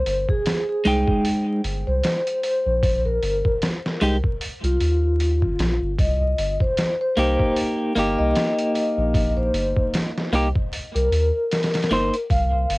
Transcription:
0.00 0.22 C5 loud
0.06 0.26 G1 medium
0.06 open hi-hat medium
0.29 0.64 G#4 medium
0.29 kick loud
0.46 snare loud
0.46 open hi-hat medium
0.69 1.20 G#4 medium
0.85 1.05 C2 medium
0.85 1.60 G#3 medium
0.85 1.61 D#4 medium
0.85 1.61 G5 medium
0.85 open hi-hat medium
1.08 kick medium
1.25 open hi-hat medium
1.64 1.84 G1 medium
1.64 open hi-hat medium
1.87 2.02 C2 medium
1.87 2.38 C5 medium
2.03 snare loud
2.03 open hi-hat medium
2.27 closed hi-hat soft
2.43 2.99 C5 loud
2.43 open hi-hat medium
2.66 3.19 A#1 medium
2.83 kick loud
2.83 open hi-hat medium
3.05 3.56 A#4 medium
3.22 3.42 G1 loud
3.22 open hi-hat medium
3.45 kick loud
3.62 snare loud
3.62 open hi-hat medium
3.86 snare medium
4.01 4.21 C2 medium
4.01 4.16 G#3 medium
4.01 4.16 D#4 medium
4.01 4.17 G4 loud
4.01 open hi-hat medium
4.24 kick medium
4.41 open hi-hat medium
4.63 4.78 C2 loud
4.63 5.85 F4 medium
4.63 closed hi-hat soft
4.80 5.44 D#2 medium
4.80 open hi-hat medium
5.20 open hi-hat medium
5.42 5.57 G1 medium
5.42 kick medium
5.59 5.79 A#1 loud
5.59 snare loud
5.59 open hi-hat medium
5.82 5.96 G1 loud
5.99 6.34 C2 loud
5.99 6.54 D#5 medium
5.99 kick loud
5.99 open hi-hat medium
6.38 6.58 G1 medium
6.38 open hi-hat medium
6.60 6.96 C5 medium
6.60 kick loud
6.77 snare loud
6.77 open hi-hat medium
7.01 7.52 C5 medium
7.17 7.37 C2 medium
7.17 7.92 A#3 medium
7.17 7.92 D#4 medium
7.17 7.93 G4 medium
7.17 open hi-hat medium
7.39 kick medium
7.56 open hi-hat medium
7.95 8.16 G1 medium
7.95 10.28 A#3 medium
7.95 10.29 D#4 medium
7.95 10.30 G4 medium
7.95 open hi-hat medium
8.18 8.33 C2 medium
8.18 8.70 D#5 loud
8.35 snare loud
8.35 open hi-hat medium
8.58 closed hi-hat soft
8.75 9.30 D#5 loud
8.75 open hi-hat medium
8.97 9.50 A#1 medium
9.14 kick loud
9.14 open hi-hat medium
9.37 9.88 C5 medium
9.53 9.73 G1 loud
9.53 open hi-hat medium
9.76 kick loud
9.94 snare loud
9.94 open hi-hat medium
10.18 snare medium
10.32 10.52 C2 medium
10.32 10.47 A#3 medium
10.32 10.48 D#4 medium
10.32 10.48 G4 medium
10.32 open hi-hat medium
10.56 kick loud
10.73 open hi-hat medium
10.95 11.10 C2 medium
10.95 12.17 A#4 medium
10.95 closed hi-hat soft
11.11 11.31 D#2 medium
11.11 open hi-hat medium
11.52 snare medium
11.52 open hi-hat medium
11.63 snare medium
11.63 open hi-hat medium
11.74 snare medium
11.74 open hi-hat medium
11.83 snare medium
11.83 open hi-hat medium
11.91 12.10 G1 medium
11.91 12.14 A#3 medium
11.91 12.14 D#4 medium
11.91 12.15 C5 medium
11.91 open hi-hat medium
12.14 closed hi-hat soft
12.30 12.66 C2 loud
12.30 12.78 F5 loud
12.30 kick loud
12.30 open hi-hat medium
12.69 12.78 G1 loud
12.69 open hi-hat medium

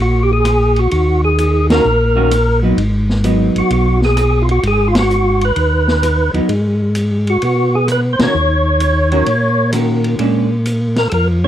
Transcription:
0.00 0.87 A#1 medium
0.00 0.23 F#4 medium
0.23 0.32 G4 medium
0.33 0.80 G#4 medium
0.45 cross-stick medium
0.45 hi-hat pedal soft
0.45 ride medium
0.76 0.91 F#4 medium
0.76 ride soft
0.91 1.81 D#2 medium
0.91 1.21 F#4 medium
0.91 ride medium
1.25 1.67 G#4 medium
1.38 hi-hat pedal medium
1.38 ride medium
1.70 1.84 D#3 medium
1.70 1.84 A#3 medium
1.70 1.84 C#4 medium
1.70 1.84 F#4 medium
1.70 2.60 A#4 loud
1.70 snare medium
1.70 ride medium
1.84 2.73 A#1 medium
2.16 2.29 D#3 medium
2.16 2.30 A#3 medium
2.16 2.30 C#4 medium
2.16 2.30 F#4 medium
2.31 cross-stick medium
2.31 hi-hat pedal medium
2.31 ride medium
2.63 2.76 F#3 medium
2.63 2.77 B3 medium
2.63 2.77 D#4 medium
2.77 3.51 G#1 medium
2.77 ride medium
3.10 snare soft
3.24 3.96 F#3 medium
3.24 3.96 B3 medium
3.24 3.96 D#4 medium
3.24 hi-hat pedal medium
3.24 ride medium
3.55 3.63 G#1 soft
3.55 3.72 F#4 medium
3.55 ride soft
3.70 4.59 B1 medium
3.70 4.01 F#4 medium
3.70 ride medium
4.02 4.43 G#4 medium
4.02 snare soft
4.17 cross-stick medium
4.17 hi-hat pedal medium
4.17 ride medium
4.42 4.49 F4 medium
4.49 4.64 F#4 medium
4.49 ride soft
4.63 5.52 G#1 medium
4.63 4.88 G#4 medium
4.63 ride medium
4.88 4.96 F4 medium
4.95 snare medium
4.95 ride medium
4.99 5.45 F#4 loud
5.10 hi-hat pedal medium
5.41 6.32 B4 medium
5.41 ride soft
5.56 6.30 D#2 medium
5.56 ride medium
5.88 snare soft
6.03 cross-stick medium
6.03 hi-hat pedal medium
6.03 ride medium
6.33 6.41 D#2 soft
6.33 6.47 F#3 medium
6.33 6.47 B3 medium
6.33 6.48 D#4 medium
6.33 ride soft
6.49 7.37 G#2 medium
6.49 ride soft
6.95 hi-hat pedal medium
6.95 ride medium
7.27 7.43 F#4 medium
7.27 ride soft
7.42 8.16 B2 medium
7.42 7.75 F#4 medium
7.42 ride medium
7.75 7.88 G#4 medium
7.88 cross-stick medium
7.88 hi-hat pedal medium
7.88 ride medium
7.92 8.01 B4 medium
8.13 8.21 C5 medium
8.19 8.27 B2 soft
8.19 8.33 D#3 medium
8.19 8.33 C#4 medium
8.19 8.33 F#4 medium
8.19 8.34 A#4 medium
8.19 snare medium
8.19 ride medium
8.23 9.71 C#5 loud
8.35 9.23 D#2 medium
8.80 hi-hat pedal soft
8.80 ride medium
9.12 9.25 D#3 medium
9.12 9.25 C#4 medium
9.12 9.25 F#4 medium
9.12 9.26 A#4 medium
9.12 ride soft
9.26 10.15 A#2 medium
9.26 ride medium
9.72 10.19 D#3 medium
9.72 10.19 C#4 medium
9.72 10.20 F#4 medium
9.72 10.20 A#4 medium
9.72 cross-stick medium
9.72 hi-hat pedal medium
9.72 ride medium
10.04 ride soft
10.19 11.08 A#2 medium
10.19 10.47 G#3 medium
10.19 10.48 C#4 medium
10.19 10.48 D4 medium
10.19 ride medium
10.65 hi-hat pedal medium
10.65 ride medium
10.96 11.08 A#4 medium
10.96 snare medium
10.96 ride soft
11.10 11.48 F2 medium
11.10 11.13 A4 medium
11.10 ride medium
11.14 11.28 A#4 medium
11.44 11.48 G#3 medium
11.44 11.48 C#4 medium
11.44 11.48 C#5 loud

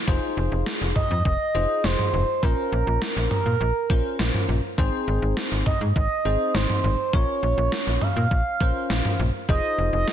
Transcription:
0.08 0.19 F1 loud
0.08 1.01 D#4 medium
0.08 1.01 F4 medium
0.08 1.01 G#4 medium
0.08 1.01 C5 medium
0.08 kick loud
0.37 0.49 F1 loud
0.52 0.63 F1 loud
0.66 snare loud
0.81 0.93 F1 loud
0.96 1.23 D#5 loud
0.96 kick medium
0.96 mid tom medium
1.11 1.22 F2 loud
1.25 1.37 F1 loud
1.25 1.86 D#5 loud
1.25 kick medium
1.55 1.66 F1 loud
1.55 2.25 D#4 medium
1.55 2.25 F4 medium
1.55 2.25 G#4 medium
1.55 2.25 C5 medium
1.84 1.96 F1 loud
1.84 2.45 C5 loud
1.84 snare loud
1.99 mid tom medium
2.13 2.25 F1 loud
2.43 2.54 A#1 loud
2.43 3.36 C#4 medium
2.43 3.36 F4 medium
2.43 3.31 A#4 loud
2.43 3.36 A#4 medium
2.43 3.36 C5 medium
2.43 kick loud
2.72 2.84 A#1 loud
2.87 2.99 A#1 medium
3.02 snare loud
3.16 3.28 A#1 loud
3.31 4.45 A#4 medium
3.31 mid tom medium
3.46 3.57 A#2 medium
3.61 3.72 A#1 loud
3.90 4.01 A#1 medium
3.90 4.60 C#4 medium
3.90 4.60 F4 medium
3.90 4.60 A#4 medium
3.90 4.60 C5 medium
3.90 kick medium
4.19 4.31 A#1 loud
4.19 snare loud
4.34 mid tom medium
4.49 4.60 A#1 loud
4.78 4.90 G#1 loud
4.78 5.71 C4 medium
4.78 5.71 D#4 medium
4.78 5.71 G#4 medium
4.78 5.71 C5 loud
4.78 kick loud
5.08 5.19 G#1 loud
5.22 5.34 G#1 medium
5.37 snare loud
5.52 5.63 G#1 loud
5.66 5.80 D#5 medium
5.66 kick medium
5.66 mid tom medium
5.81 5.93 G#2 medium
5.96 6.07 G#1 loud
5.96 6.56 D#5 medium
5.96 kick medium
6.25 6.37 G#1 medium
6.25 6.95 C4 medium
6.25 6.95 D#4 medium
6.25 6.95 G#4 medium
6.25 6.95 C5 medium
6.54 6.66 G#1 loud
6.54 7.15 C5 medium
6.54 snare loud
6.70 mid tom medium
6.84 6.96 G#1 loud
7.13 7.25 A#1 loud
7.13 8.07 C#4 medium
7.13 8.07 F4 medium
7.13 8.07 A#4 medium
7.13 8.07 C#5 medium
7.13 8.03 C#5 loud
7.13 kick loud
7.43 7.54 A#1 medium
7.58 7.69 A#1 loud
7.72 snare loud
7.87 7.99 A#1 medium
8.01 9.19 F5 loud
8.01 mid tom medium
8.16 8.28 A#2 loud
8.31 8.43 A#1 loud
8.31 kick medium
8.60 8.72 A#1 loud
8.60 9.30 C#4 medium
8.60 9.30 F4 medium
8.60 9.30 A#4 medium
8.60 9.30 C5 medium
8.60 kick medium
8.90 9.01 A#1 loud
8.90 snare loud
9.05 mid tom medium
9.19 9.31 A#1 loud
9.49 9.60 F1 loud
9.49 10.13 D#4 medium
9.49 10.13 F4 medium
9.49 10.13 G#4 medium
9.49 10.13 C5 medium
9.49 9.90 D#5 loud
9.49 kick loud
9.78 9.90 F1 loud
9.93 10.04 F1 medium
9.93 10.13 D#5 loud
10.08 snare loud

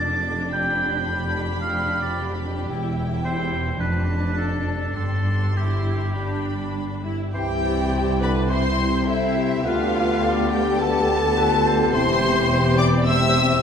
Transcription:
0.00 2.67 F1 soft
0.00 2.67 F2 medium
0.00 2.67 D4 medium
0.00 0.48 A4 soft
0.00 0.51 A5 medium
0.00 0.48 D6 soft
0.52 3.77 G4 medium
0.52 1.33 G5 medium
0.52 2.67 B5 medium
1.61 2.00 F5 medium
2.02 2.29 D5 medium
2.70 3.78 E1 medium
2.70 3.78 E2 medium
2.70 3.77 E4 medium
2.70 3.76 G5 soft
3.25 3.77 C5 medium
3.80 4.94 F1 soft
3.80 4.95 F2 medium
3.80 5.46 D4 soft
3.80 4.94 D4 soft
3.80 4.36 B4 medium
3.80 4.93 A5 soft
4.37 4.96 A4 medium
4.96 7.08 G1 soft
4.96 7.09 G2 soft
4.96 7.09 G4 soft
4.96 5.58 A4 medium
4.96 6.11 C6 soft
5.56 6.12 E4 soft
5.56 6.75 G4 soft
6.16 7.05 D4 soft
6.16 7.09 B5 soft
7.05 7.34 E4 soft
7.34 9.62 C2 soft
7.34 9.62 C2 medium
7.34 7.88 E3 soft
7.34 9.62 C4 soft
7.34 8.46 C4 soft
7.34 9.62 E4 soft
7.34 8.46 E4 medium
7.34 7.95 G4 soft
7.34 8.18 G4 medium
7.34 7.48 C5 soft
7.34 8.24 G5 medium
7.34 8.18 G5 medium
7.65 8.52 D5 soft
7.93 8.23 C3 medium
7.93 8.49 E4 soft
8.21 8.50 D3 soft
8.21 8.50 B4 medium
8.21 8.30 B5 medium
8.21 8.51 B5 medium
8.50 8.63 E3 soft
8.50 9.07 C4 soft
8.50 9.07 E4 soft
8.50 9.09 E4 soft
8.50 9.07 C5 soft
8.50 9.08 C5 medium
8.50 9.10 C6 soft
8.50 9.07 C6 medium
8.79 9.66 C3 soft
9.08 9.65 C4 soft
9.08 9.65 E4 soft
9.08 9.65 E4 medium
9.08 9.39 A4 soft
9.08 9.64 C5 soft
9.08 9.67 E5 medium
9.08 9.65 E5 medium
9.38 9.68 G4 soft
9.65 11.90 D2 medium
9.65 11.94 D3 soft
9.65 11.90 B3 medium
9.65 11.94 B3 medium
9.65 10.50 F4 medium
9.65 10.25 F4 medium
9.65 13.62 G4 medium
9.65 11.90 G4 medium
9.65 10.25 B4 soft
9.65 10.51 F5 medium
9.65 10.52 F5 medium
10.23 10.52 A4 soft
10.23 10.78 D5 medium
10.50 11.39 G4 medium
10.50 10.81 G4 medium
10.50 10.82 G5 medium
10.50 10.80 G5 medium
10.79 11.95 A4 medium
10.79 11.39 D5 soft
10.79 11.71 A5 medium
10.79 11.94 A5 medium
11.37 11.94 F4 soft
11.37 11.68 B4 medium
11.67 13.62 C5 medium
11.92 13.62 E1 medium
11.92 13.62 E2 medium
11.92 13.08 E3 medium
11.92 13.62 C4 medium
11.92 13.05 C4 medium
11.92 12.22 E4 medium
11.92 13.05 G4 medium
11.92 12.77 C5 medium
11.92 12.79 C6 medium
11.92 12.77 C6 medium
12.23 12.50 G4 medium
12.51 13.62 G4 medium
12.78 13.07 D5 medium
12.78 13.05 D6 medium
12.78 12.86 D6 medium
13.06 13.35 C3 medium
13.06 13.62 C4 medium
13.06 13.62 G4 medium
13.06 13.62 E5 medium
13.06 13.62 E6 medium
13.36 13.62 C3 medium

